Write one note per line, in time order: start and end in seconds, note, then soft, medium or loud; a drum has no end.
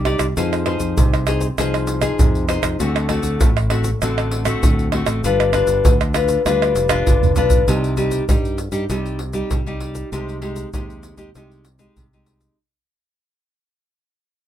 0.00 0.15 C2 medium
0.00 0.34 G3 medium
0.05 0.25 D#4 medium
0.05 0.26 G4 medium
0.05 0.26 D5 medium
0.05 pandeiro medium
0.05 tamborim medium
0.19 0.33 C2 medium
0.19 pandeiro medium
0.19 tamborim medium
0.19 shaker medium
0.19 surdo soft
0.37 0.76 F2 loud
0.37 0.95 F3 medium
0.37 0.62 D#4 medium
0.37 0.63 G#4 medium
0.37 0.63 C5 medium
0.37 pandeiro medium
0.37 shaker medium
0.37 surdo medium
0.53 pandeiro soft
0.53 tamborim medium
0.53 shaker soft
0.66 1.23 D#4 medium
0.66 1.23 G#4 medium
0.66 1.23 C5 medium
0.66 pandeiro medium
0.66 tamborim medium
0.80 0.94 F2 medium
0.80 pandeiro medium
0.80 shaker medium
0.80 surdo soft
0.97 1.49 C2 loud
0.97 1.55 C3 medium
0.97 pandeiro medium
0.97 shaker medium
0.97 surdo loud
1.14 pandeiro soft
1.14 tamborim medium
1.14 shaker soft
1.27 1.46 D#4 medium
1.27 1.46 G#4 medium
1.27 1.46 C5 medium
1.27 pandeiro medium
1.27 tamborim medium
1.27 shaker medium
1.41 pandeiro medium
1.41 shaker medium
1.41 surdo soft
1.58 2.10 C2 medium
1.58 2.16 F3 medium
1.58 2.00 D#4 medium
1.58 2.00 G#4 medium
1.58 2.00 C5 medium
1.58 pandeiro medium
1.58 tamborim medium
1.58 shaker medium
1.58 surdo medium
1.74 pandeiro soft
1.74 tamborim medium
1.74 shaker soft
1.87 pandeiro medium
1.87 shaker medium
2.01 2.44 D#4 medium
2.01 2.44 G#4 medium
2.01 2.44 C5 medium
2.01 pandeiro medium
2.01 tamborim medium
2.01 shaker medium
2.01 surdo soft
2.19 2.58 F2 medium
2.19 2.77 C3 medium
2.19 pandeiro medium
2.19 shaker medium
2.19 surdo loud
2.35 pandeiro soft
2.35 shaker soft
2.49 2.77 D#4 medium
2.49 2.77 G#4 medium
2.49 2.78 C5 medium
2.49 pandeiro medium
2.49 tamborim medium
2.49 shaker medium
2.63 2.76 F2 medium
2.63 pandeiro medium
2.63 tamborim medium
2.63 shaker medium
2.63 surdo soft
2.80 3.19 D2 medium
2.80 3.38 D3 medium
2.80 3.06 A3 medium
2.80 3.06 C4 medium
2.80 3.06 F#4 medium
2.80 pandeiro medium
2.80 shaker medium
2.80 surdo medium
2.96 pandeiro soft
2.96 tamborim medium
2.96 shaker soft
3.09 3.49 A3 medium
3.09 3.49 C4 medium
3.09 3.50 F#4 medium
3.09 pandeiro medium
3.09 tamborim medium
3.09 surdo soft
3.23 3.37 D2 medium
3.23 pandeiro medium
3.23 shaker medium
3.23 surdo soft
3.41 3.93 A1 medium
3.41 3.99 A2 medium
3.41 pandeiro medium
3.41 shaker medium
3.41 surdo loud
3.57 pandeiro soft
3.57 tamborim medium
3.57 shaker soft
3.70 3.89 A3 medium
3.70 3.89 C4 soft
3.70 3.89 F#4 medium
3.70 pandeiro medium
3.70 tamborim medium
3.84 pandeiro medium
3.84 shaker medium
3.84 surdo soft
4.02 4.53 A1 medium
4.02 4.60 D3 medium
4.02 4.43 A3 medium
4.02 4.43 C4 medium
4.02 4.43 F#4 medium
4.02 pandeiro medium
4.02 tamborim medium
4.02 shaker medium
4.02 surdo medium
4.18 pandeiro soft
4.18 tamborim medium
4.18 shaker soft
4.31 pandeiro medium
4.45 4.87 A3 medium
4.45 4.87 C4 medium
4.45 4.87 F#4 medium
4.45 pandeiro medium
4.45 tamborim medium
4.45 shaker medium
4.45 surdo soft
4.63 5.02 D2 medium
4.63 5.21 A2 medium
4.63 pandeiro medium
4.63 shaker medium
4.63 surdo loud
4.79 pandeiro soft
4.79 shaker soft
4.92 5.21 A3 medium
4.92 5.21 C4 medium
4.92 5.21 F#4 medium
4.92 pandeiro medium
4.92 tamborim medium
5.06 5.20 A1 medium
5.06 pandeiro medium
5.06 tamborim medium
5.06 shaker medium
5.06 surdo soft
5.24 5.62 G1 loud
5.24 5.82 G3 medium
5.24 5.50 D4 medium
5.24 5.50 F4 medium
5.24 5.50 B4 medium
5.24 pandeiro medium
5.24 shaker medium
5.24 surdo medium
5.40 pandeiro soft
5.40 tamborim medium
5.40 shaker soft
5.53 5.93 D4 medium
5.53 5.93 F4 medium
5.53 5.93 B4 medium
5.53 pandeiro medium
5.53 tamborim medium
5.53 shaker medium
5.53 surdo soft
5.67 5.81 G1 medium
5.67 pandeiro medium
5.67 shaker medium
5.67 surdo soft
5.85 6.36 D2 loud
5.85 6.42 D3 medium
5.85 pandeiro medium
5.85 shaker medium
5.85 surdo loud
6.01 pandeiro soft
6.01 tamborim medium
6.01 shaker soft
6.14 6.40 D4 medium
6.14 6.40 F4 medium
6.14 6.41 B4 medium
6.14 pandeiro medium
6.14 tamborim medium
6.14 shaker medium
6.28 pandeiro medium
6.28 shaker medium
6.28 surdo soft
6.45 6.71 D2 medium
6.45 7.04 G3 medium
6.45 6.87 D4 medium
6.45 6.87 F4 medium
6.45 6.87 B4 medium
6.45 pandeiro medium
6.45 tamborim medium
6.45 shaker medium
6.45 surdo medium
6.62 pandeiro soft
6.62 tamborim medium
6.62 shaker soft
6.75 7.03 F1 medium
6.75 pandeiro medium
6.75 shaker medium
6.89 7.31 D4 medium
6.89 7.31 F4 medium
6.89 7.31 B4 medium
6.89 pandeiro medium
6.89 tamborim loud
6.89 shaker medium
6.89 surdo soft
7.07 7.34 G1 medium
7.07 7.65 D3 medium
7.07 pandeiro medium
7.07 shaker medium
7.07 surdo loud
7.23 surdo loud
7.23 pandeiro soft
7.23 shaker soft
7.36 7.64 B1 medium
7.36 7.65 D4 medium
7.36 7.65 F4 medium
7.36 7.65 B4 medium
7.36 surdo medium
7.36 pandeiro medium
7.36 shaker medium
7.50 pandeiro medium
7.50 shaker medium
7.50 surdo loud
7.68 8.19 C2 loud
7.68 8.26 C3 medium
7.68 7.93 G3 medium
7.68 7.93 D#4 medium
7.68 7.94 G4 medium
7.68 pandeiro medium
7.68 shaker medium
7.68 surdo medium
7.84 pandeiro soft
7.84 shaker soft
7.97 8.23 G3 medium
7.97 8.23 D#4 medium
7.97 8.24 G4 medium
7.97 pandeiro medium
7.97 shaker medium
7.97 surdo soft
8.11 pandeiro medium
8.11 shaker medium
8.11 surdo soft
8.29 8.68 G2 medium
8.29 8.57 G3 medium
8.29 8.57 D#4 soft
8.29 8.58 G4 medium
8.29 pandeiro medium
8.29 shaker medium
8.29 surdo loud
8.45 pandeiro soft
8.45 shaker soft
8.58 pandeiro medium
8.58 shaker medium
8.72 8.86 G2 medium
8.72 8.84 G3 medium
8.72 8.84 D#4 medium
8.72 8.84 G4 medium
8.72 pandeiro medium
8.72 shaker medium
8.72 surdo soft
8.89 9.41 C2 loud
8.89 9.48 C3 medium
8.89 9.18 G3 medium
8.89 9.19 D#4 medium
8.89 9.19 G4 medium
8.89 pandeiro medium
8.89 shaker medium
8.89 surdo medium
9.06 pandeiro soft
9.06 shaker soft
9.19 pandeiro medium
9.33 9.50 G3 medium
9.33 9.60 D#4 medium
9.33 9.61 G4 medium
9.33 pandeiro medium
9.33 shaker medium
9.33 surdo soft
9.51 10.03 C2 medium
9.51 9.65 G3 medium
9.51 pandeiro medium
9.51 shaker medium
9.51 surdo loud
9.66 10.10 G3 medium
9.66 10.10 D#4 medium
9.66 10.10 G4 medium
9.66 pandeiro soft
9.66 shaker soft
9.80 pandeiro medium
9.95 pandeiro medium
9.95 shaker medium
9.95 surdo soft
10.12 10.64 C2 loud
10.12 10.71 C3 medium
10.12 10.38 G#3 medium
10.12 10.38 D#4 medium
10.12 10.38 G4 medium
10.12 pandeiro medium
10.12 shaker medium
10.12 surdo soft
10.29 pandeiro soft
10.29 shaker soft
10.42 10.68 G#3 medium
10.42 10.68 D#4 medium
10.42 10.68 G4 medium
10.42 pandeiro medium
10.56 pandeiro soft
10.56 shaker medium
10.56 surdo soft
10.73 11.12 D#2 medium
10.73 11.32 C3 medium
10.73 11.15 G#3 medium
10.73 11.15 D#4 medium
10.73 11.15 G4 medium
10.73 pandeiro medium
10.73 shaker medium
10.73 surdo loud
10.90 pandeiro soft
10.90 shaker soft
11.03 pandeiro medium
11.03 shaker medium
11.17 11.31 D#2 medium
11.17 11.29 G#3 medium
11.17 11.29 D#4 medium
11.17 11.29 G4 medium
11.17 pandeiro medium
11.17 shaker medium
11.17 surdo soft
11.35 11.87 C2 medium
11.35 11.94 C3 medium
11.35 11.64 G#3 medium
11.35 11.64 D#4 medium
11.35 11.64 G4 medium
11.35 pandeiro medium
11.35 shaker medium
11.35 surdo medium
11.52 pandeiro soft
11.52 shaker soft
11.65 pandeiro medium
11.65 shaker medium
11.79 12.06 G#3 medium
11.79 12.06 D#4 medium
11.79 12.06 G4 medium
11.79 pandeiro medium
11.79 shaker medium
11.79 surdo soft
11.96 12.48 C2 medium
11.96 12.55 C3 soft
11.96 pandeiro medium
11.96 shaker medium
11.96 surdo medium
12.13 12.56 G#3 medium
12.13 12.56 D#4 medium
12.13 12.56 G4 medium
12.13 pandeiro soft
12.13 shaker soft
12.26 pandeiro medium
12.26 shaker medium
12.41 pandeiro medium
12.41 shaker medium
12.41 surdo soft